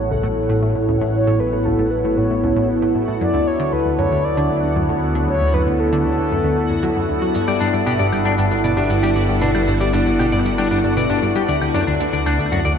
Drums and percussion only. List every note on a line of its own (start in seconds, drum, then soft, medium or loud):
7.35 shaker medium
7.48 claves soft
7.48 shaker soft
7.61 shaker medium
7.74 shaker soft
7.86 shaker medium
8.00 shaker soft
8.13 claves medium
8.13 shaker medium
8.25 shaker soft
8.38 shaker medium
8.51 shaker soft
8.64 shaker medium
8.77 shaker soft
8.90 shaker medium
9.03 shaker soft
9.16 shaker soft
9.42 shaker medium
9.55 claves soft
9.55 shaker soft
9.68 shaker medium
9.80 shaker soft
9.94 shaker medium
10.07 shaker soft
10.20 claves medium
10.20 shaker medium
10.32 shaker soft
10.45 shaker medium
10.58 shaker soft
10.71 shaker medium
10.84 shaker soft
10.97 shaker medium
11.10 shaker soft
11.23 shaker soft
11.49 shaker medium
11.62 claves medium
11.62 shaker soft
11.74 shaker medium
11.87 shaker soft
12.00 shaker medium
12.13 shaker soft
12.27 claves medium
12.27 shaker medium
12.39 shaker soft
12.52 shaker medium
12.65 shaker soft